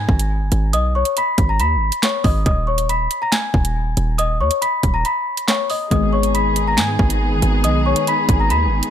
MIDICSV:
0, 0, Header, 1, 6, 480
1, 0, Start_track
1, 0, Key_signature, 5, "minor"
1, 0, Tempo, 431655
1, 816, Time_signature, 4, 2, 24, 8
1, 9898, End_track
2, 0, Start_track
2, 0, Title_t, "Celesta"
2, 0, Program_c, 0, 8
2, 0, Note_on_c, 0, 80, 92
2, 0, Note_on_c, 0, 92, 65
2, 771, Note_off_c, 0, 80, 0
2, 775, Note_off_c, 0, 92, 0
2, 814, Note_on_c, 0, 87, 109
2, 823, Note_on_c, 0, 75, 84
2, 1019, Note_off_c, 0, 87, 0
2, 1024, Note_off_c, 0, 75, 0
2, 1059, Note_on_c, 0, 85, 76
2, 1068, Note_on_c, 0, 73, 61
2, 1261, Note_off_c, 0, 85, 0
2, 1267, Note_off_c, 0, 73, 0
2, 1307, Note_on_c, 0, 83, 94
2, 1316, Note_on_c, 0, 95, 70
2, 1640, Note_off_c, 0, 83, 0
2, 1645, Note_off_c, 0, 95, 0
2, 1659, Note_on_c, 0, 82, 78
2, 1668, Note_on_c, 0, 94, 54
2, 1760, Note_off_c, 0, 82, 0
2, 1765, Note_off_c, 0, 94, 0
2, 1780, Note_on_c, 0, 83, 90
2, 1789, Note_on_c, 0, 95, 66
2, 2229, Note_off_c, 0, 83, 0
2, 2234, Note_off_c, 0, 95, 0
2, 2260, Note_on_c, 0, 85, 64
2, 2269, Note_on_c, 0, 73, 54
2, 2462, Note_off_c, 0, 85, 0
2, 2467, Note_off_c, 0, 73, 0
2, 2492, Note_on_c, 0, 87, 78
2, 2501, Note_on_c, 0, 75, 64
2, 2697, Note_off_c, 0, 87, 0
2, 2703, Note_off_c, 0, 75, 0
2, 2739, Note_on_c, 0, 87, 89
2, 2747, Note_on_c, 0, 75, 74
2, 2941, Note_off_c, 0, 87, 0
2, 2946, Note_off_c, 0, 75, 0
2, 2971, Note_on_c, 0, 85, 71
2, 2980, Note_on_c, 0, 73, 57
2, 3177, Note_off_c, 0, 85, 0
2, 3182, Note_off_c, 0, 73, 0
2, 3218, Note_on_c, 0, 83, 80
2, 3227, Note_on_c, 0, 95, 59
2, 3555, Note_off_c, 0, 83, 0
2, 3560, Note_off_c, 0, 95, 0
2, 3579, Note_on_c, 0, 82, 81
2, 3588, Note_on_c, 0, 94, 60
2, 3679, Note_off_c, 0, 82, 0
2, 3685, Note_off_c, 0, 94, 0
2, 3692, Note_on_c, 0, 80, 92
2, 3701, Note_on_c, 0, 92, 73
2, 4610, Note_off_c, 0, 80, 0
2, 4614, Note_off_c, 0, 92, 0
2, 4652, Note_on_c, 0, 87, 110
2, 4661, Note_on_c, 0, 75, 82
2, 4857, Note_off_c, 0, 87, 0
2, 4863, Note_off_c, 0, 75, 0
2, 4899, Note_on_c, 0, 85, 79
2, 4908, Note_on_c, 0, 73, 62
2, 5102, Note_off_c, 0, 85, 0
2, 5106, Note_off_c, 0, 73, 0
2, 5134, Note_on_c, 0, 83, 86
2, 5142, Note_on_c, 0, 95, 67
2, 5473, Note_off_c, 0, 83, 0
2, 5478, Note_off_c, 0, 95, 0
2, 5491, Note_on_c, 0, 82, 78
2, 5499, Note_on_c, 0, 94, 57
2, 5595, Note_off_c, 0, 82, 0
2, 5600, Note_off_c, 0, 94, 0
2, 5619, Note_on_c, 0, 83, 83
2, 5628, Note_on_c, 0, 95, 69
2, 6069, Note_off_c, 0, 83, 0
2, 6073, Note_off_c, 0, 95, 0
2, 6096, Note_on_c, 0, 85, 69
2, 6105, Note_on_c, 0, 73, 54
2, 6300, Note_off_c, 0, 85, 0
2, 6305, Note_off_c, 0, 73, 0
2, 6339, Note_on_c, 0, 87, 78
2, 6348, Note_on_c, 0, 75, 62
2, 6541, Note_off_c, 0, 87, 0
2, 6546, Note_off_c, 0, 75, 0
2, 6577, Note_on_c, 0, 87, 95
2, 6586, Note_on_c, 0, 75, 71
2, 6780, Note_off_c, 0, 87, 0
2, 6786, Note_off_c, 0, 75, 0
2, 6813, Note_on_c, 0, 85, 69
2, 6822, Note_on_c, 0, 73, 56
2, 7018, Note_off_c, 0, 85, 0
2, 7023, Note_off_c, 0, 73, 0
2, 7055, Note_on_c, 0, 83, 80
2, 7064, Note_on_c, 0, 95, 63
2, 7394, Note_off_c, 0, 83, 0
2, 7398, Note_off_c, 0, 95, 0
2, 7423, Note_on_c, 0, 82, 83
2, 7432, Note_on_c, 0, 94, 64
2, 7522, Note_off_c, 0, 82, 0
2, 7527, Note_off_c, 0, 94, 0
2, 7534, Note_on_c, 0, 80, 90
2, 7542, Note_on_c, 0, 92, 67
2, 8450, Note_off_c, 0, 80, 0
2, 8455, Note_off_c, 0, 92, 0
2, 8493, Note_on_c, 0, 87, 108
2, 8502, Note_on_c, 0, 75, 87
2, 8698, Note_off_c, 0, 87, 0
2, 8703, Note_off_c, 0, 75, 0
2, 8739, Note_on_c, 0, 85, 74
2, 8748, Note_on_c, 0, 73, 61
2, 8941, Note_off_c, 0, 85, 0
2, 8946, Note_off_c, 0, 73, 0
2, 8986, Note_on_c, 0, 83, 92
2, 8996, Note_on_c, 0, 95, 73
2, 9320, Note_off_c, 0, 83, 0
2, 9325, Note_off_c, 0, 95, 0
2, 9338, Note_on_c, 0, 82, 77
2, 9347, Note_on_c, 0, 94, 55
2, 9439, Note_off_c, 0, 82, 0
2, 9444, Note_off_c, 0, 94, 0
2, 9459, Note_on_c, 0, 83, 93
2, 9468, Note_on_c, 0, 95, 67
2, 9898, Note_off_c, 0, 83, 0
2, 9898, Note_off_c, 0, 95, 0
2, 9898, End_track
3, 0, Start_track
3, 0, Title_t, "String section"
3, 0, Program_c, 1, 48
3, 6576, Note_on_c, 1, 51, 78
3, 6576, Note_on_c, 1, 59, 70
3, 6576, Note_on_c, 1, 68, 87
3, 9898, Note_off_c, 1, 51, 0
3, 9898, Note_off_c, 1, 59, 0
3, 9898, Note_off_c, 1, 68, 0
3, 9898, End_track
4, 0, Start_track
4, 0, Title_t, "Synth keys"
4, 0, Program_c, 2, 88
4, 6567, Note_on_c, 2, 51, 66
4, 6576, Note_on_c, 2, 56, 59
4, 6584, Note_on_c, 2, 59, 62
4, 6593, Note_on_c, 2, 68, 72
4, 6787, Control_c, 2, 64, 127
4, 9898, Note_off_c, 2, 51, 0
4, 9898, Note_off_c, 2, 56, 0
4, 9898, Note_off_c, 2, 59, 0
4, 9898, Note_off_c, 2, 68, 0
4, 9898, End_track
5, 0, Start_track
5, 0, Title_t, "808-style bass"
5, 0, Program_c, 3, 38
5, 96, Note_on_c, 3, 32, 109
5, 456, Note_on_c, 3, 31, 98
5, 473, Note_off_c, 3, 32, 0
5, 570, Note_off_c, 3, 31, 0
5, 576, Note_on_c, 3, 32, 105
5, 816, Note_on_c, 3, 35, 102
5, 833, Note_off_c, 3, 32, 0
5, 1158, Note_off_c, 3, 35, 0
5, 1535, Note_on_c, 3, 32, 108
5, 1776, Note_on_c, 3, 39, 95
5, 1793, Note_off_c, 3, 32, 0
5, 1956, Note_on_c, 3, 32, 99
5, 1973, Note_off_c, 3, 39, 0
5, 2127, Note_off_c, 3, 32, 0
5, 2496, Note_on_c, 3, 32, 103
5, 2726, Note_off_c, 3, 32, 0
5, 2736, Note_on_c, 3, 27, 111
5, 3427, Note_off_c, 3, 27, 0
5, 3936, Note_on_c, 3, 27, 109
5, 4397, Note_off_c, 3, 27, 0
5, 4416, Note_on_c, 3, 27, 102
5, 4896, Note_on_c, 3, 39, 101
5, 4913, Note_off_c, 3, 27, 0
5, 5010, Note_off_c, 3, 39, 0
5, 5376, Note_on_c, 3, 27, 105
5, 5606, Note_off_c, 3, 27, 0
5, 6576, Note_on_c, 3, 32, 105
5, 7536, Note_on_c, 3, 44, 99
5, 7552, Note_off_c, 3, 32, 0
5, 7764, Note_off_c, 3, 44, 0
5, 7775, Note_on_c, 3, 32, 110
5, 8135, Note_on_c, 3, 31, 97
5, 8152, Note_off_c, 3, 32, 0
5, 8250, Note_off_c, 3, 31, 0
5, 8255, Note_on_c, 3, 32, 104
5, 8495, Note_on_c, 3, 35, 103
5, 8512, Note_off_c, 3, 32, 0
5, 8838, Note_off_c, 3, 35, 0
5, 9216, Note_on_c, 3, 32, 108
5, 9456, Note_on_c, 3, 39, 97
5, 9473, Note_off_c, 3, 32, 0
5, 9636, Note_on_c, 3, 32, 99
5, 9652, Note_off_c, 3, 39, 0
5, 9807, Note_off_c, 3, 32, 0
5, 9898, End_track
6, 0, Start_track
6, 0, Title_t, "Drums"
6, 96, Note_on_c, 9, 36, 98
6, 207, Note_off_c, 9, 36, 0
6, 216, Note_on_c, 9, 42, 93
6, 327, Note_off_c, 9, 42, 0
6, 575, Note_on_c, 9, 42, 74
6, 686, Note_off_c, 9, 42, 0
6, 816, Note_on_c, 9, 42, 77
6, 927, Note_off_c, 9, 42, 0
6, 1171, Note_on_c, 9, 42, 81
6, 1282, Note_off_c, 9, 42, 0
6, 1297, Note_on_c, 9, 42, 72
6, 1409, Note_off_c, 9, 42, 0
6, 1534, Note_on_c, 9, 42, 92
6, 1535, Note_on_c, 9, 36, 96
6, 1646, Note_off_c, 9, 36, 0
6, 1646, Note_off_c, 9, 42, 0
6, 1774, Note_on_c, 9, 42, 61
6, 1885, Note_off_c, 9, 42, 0
6, 2135, Note_on_c, 9, 42, 98
6, 2247, Note_off_c, 9, 42, 0
6, 2255, Note_on_c, 9, 38, 123
6, 2258, Note_on_c, 9, 42, 76
6, 2262, Note_on_c, 9, 39, 102
6, 2367, Note_off_c, 9, 38, 0
6, 2369, Note_off_c, 9, 42, 0
6, 2373, Note_off_c, 9, 39, 0
6, 2494, Note_on_c, 9, 46, 57
6, 2496, Note_on_c, 9, 36, 91
6, 2606, Note_off_c, 9, 46, 0
6, 2607, Note_off_c, 9, 36, 0
6, 2735, Note_on_c, 9, 42, 80
6, 2736, Note_on_c, 9, 36, 120
6, 2846, Note_off_c, 9, 42, 0
6, 2847, Note_off_c, 9, 36, 0
6, 3091, Note_on_c, 9, 42, 80
6, 3202, Note_off_c, 9, 42, 0
6, 3218, Note_on_c, 9, 42, 72
6, 3329, Note_off_c, 9, 42, 0
6, 3455, Note_on_c, 9, 42, 90
6, 3566, Note_off_c, 9, 42, 0
6, 3695, Note_on_c, 9, 42, 63
6, 3696, Note_on_c, 9, 38, 109
6, 3703, Note_on_c, 9, 39, 88
6, 3806, Note_off_c, 9, 42, 0
6, 3807, Note_off_c, 9, 38, 0
6, 3814, Note_off_c, 9, 39, 0
6, 3936, Note_on_c, 9, 36, 99
6, 4047, Note_off_c, 9, 36, 0
6, 4056, Note_on_c, 9, 42, 97
6, 4167, Note_off_c, 9, 42, 0
6, 4415, Note_on_c, 9, 42, 76
6, 4526, Note_off_c, 9, 42, 0
6, 4656, Note_on_c, 9, 42, 80
6, 4767, Note_off_c, 9, 42, 0
6, 5012, Note_on_c, 9, 42, 83
6, 5123, Note_off_c, 9, 42, 0
6, 5138, Note_on_c, 9, 42, 70
6, 5249, Note_off_c, 9, 42, 0
6, 5375, Note_on_c, 9, 36, 93
6, 5375, Note_on_c, 9, 42, 92
6, 5486, Note_off_c, 9, 42, 0
6, 5487, Note_off_c, 9, 36, 0
6, 5615, Note_on_c, 9, 42, 63
6, 5726, Note_off_c, 9, 42, 0
6, 5976, Note_on_c, 9, 42, 98
6, 6087, Note_off_c, 9, 42, 0
6, 6096, Note_on_c, 9, 38, 122
6, 6098, Note_on_c, 9, 42, 75
6, 6103, Note_on_c, 9, 39, 99
6, 6207, Note_off_c, 9, 38, 0
6, 6210, Note_off_c, 9, 42, 0
6, 6214, Note_off_c, 9, 39, 0
6, 6335, Note_on_c, 9, 46, 55
6, 6446, Note_off_c, 9, 46, 0
6, 6575, Note_on_c, 9, 42, 78
6, 6576, Note_on_c, 9, 36, 117
6, 6687, Note_off_c, 9, 36, 0
6, 6687, Note_off_c, 9, 42, 0
6, 6931, Note_on_c, 9, 42, 78
6, 7043, Note_off_c, 9, 42, 0
6, 7058, Note_on_c, 9, 42, 72
6, 7169, Note_off_c, 9, 42, 0
6, 7295, Note_on_c, 9, 42, 93
6, 7406, Note_off_c, 9, 42, 0
6, 7534, Note_on_c, 9, 42, 63
6, 7535, Note_on_c, 9, 38, 112
6, 7542, Note_on_c, 9, 39, 87
6, 7646, Note_off_c, 9, 38, 0
6, 7646, Note_off_c, 9, 42, 0
6, 7653, Note_off_c, 9, 39, 0
6, 7776, Note_on_c, 9, 36, 99
6, 7887, Note_off_c, 9, 36, 0
6, 7896, Note_on_c, 9, 42, 94
6, 8007, Note_off_c, 9, 42, 0
6, 8255, Note_on_c, 9, 42, 76
6, 8366, Note_off_c, 9, 42, 0
6, 8496, Note_on_c, 9, 42, 79
6, 8607, Note_off_c, 9, 42, 0
6, 8851, Note_on_c, 9, 42, 81
6, 8963, Note_off_c, 9, 42, 0
6, 8978, Note_on_c, 9, 42, 71
6, 9089, Note_off_c, 9, 42, 0
6, 9215, Note_on_c, 9, 36, 97
6, 9215, Note_on_c, 9, 42, 90
6, 9326, Note_off_c, 9, 42, 0
6, 9327, Note_off_c, 9, 36, 0
6, 9455, Note_on_c, 9, 42, 62
6, 9566, Note_off_c, 9, 42, 0
6, 9816, Note_on_c, 9, 42, 97
6, 9898, Note_off_c, 9, 42, 0
6, 9898, End_track
0, 0, End_of_file